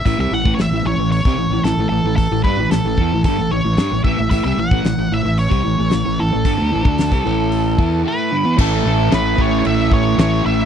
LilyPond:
<<
  \new Staff \with { instrumentName = "Lead electric guitar" } { \time 4/4 \key a \major \tempo 4 = 112 e''16 e''16 fis''16. cis''32 e''8 cis''8 cis''4 a'8 a'8 | a'8 b'8 a'4 a'8 cis''4 e''8 | e''16 e''16 fis''4 e''8 cis''4. a'8~ | a'2. b'4 |
a'4 b'8 cis''16. cis''32 e''8 cis''8 cis''8 e''8 | }
  \new Staff \with { instrumentName = "Distorted electric guitar" } { \clef bass \time 4/4 \key a \major r1 | r1 | r1 | r1 |
<a, e a>4. <a, e a>2~ <a, e a>8 | }
  \new Staff \with { instrumentName = "Overdriven electric guitar" } { \clef bass \time 4/4 \key a \major <a, e>16 <c g>16 <a, e>16 <a, e>16 <a, e>16 <a, e>16 <a, e>16 <a, e>8 <c g>16 <a, e>16 <a, e>16 <a, e>16 <a, e>16 <a, e>16 <a, e>16~ | <a, e>16 <a, e>16 <g d'>16 <a, e>16 <a, e>16 <a, e>16 <e b>16 <a, e>16 <g, d>16 <a, e>16 <a, e>16 <a, e>16 <g d'>16 <a, e>16 <a, e>16 <a, e>16 | <a, e>16 <c g>16 <a, e>16 <a, e>16 <a, e>16 <a, e>16 <a, e>16 <a, e>8 <c g>16 <a, e>16 <a, e>16 <a, e>16 <a, e>16 <a, e>16 <a, e>16 | <g, d>16 <d a>16 <a, e>16 <d a d'>8 <c g>16 <a, e a>4 <e b e'>8 <a e' a'>8 <g, d>16 <e b>16 |
<a, e a cis' e'>8 <a cis' e'>8 <a, e a cis' e'>8 <a cis' e'>4. <e a cis' e'>8 <a cis' e'>8 | }
  \new Staff \with { instrumentName = "Fingered electric bass" } { \clef bass \time 4/4 \key a \major a,,16 c,16 a,,16 a,,16 a,,16 a,,16 a,,16 a,,8 c,16 a,,16 a,,16 a,,16 a,,16 a,,16 a,,16~ | a,,16 a,,16 g,16 a,,16 a,,16 a,,16 e,16 a,,16 g,,16 a,,16 a,,16 a,,16 g,16 a,,16 a,,16 a,,16 | a,,16 c,16 a,,16 a,,16 a,,16 a,,16 a,,16 a,,8 c,16 a,,16 a,,16 a,,16 a,,16 a,,16 a,,16 | g,,16 d,16 a,,16 d,8 c,16 a,,4 e,8 r4 |
a,,8 a,,8 a,,8 a,,8 a,,4 a,,8 a,,8 | }
  \new DrumStaff \with { instrumentName = "Drums" } \drummode { \time 4/4 <hho bd>8. bd16 <hho sn>4 hho16 bd8. <hho sn>4 | <hho bd>8 bd8 <hho sn>8 bd8 <hho bd>4 <hho sn>8 bd8 | <hho bd>8. bd16 <hho sn>4 hho16 bd8. <hho sn>4 | <hho bd>8. bd16 <hho sn>16 bd8. hho8 bd8 r4 |
<cymc bd>4 <cymc sn>8 bd8 cymc8 bd8 <cymc sn>4 | }
>>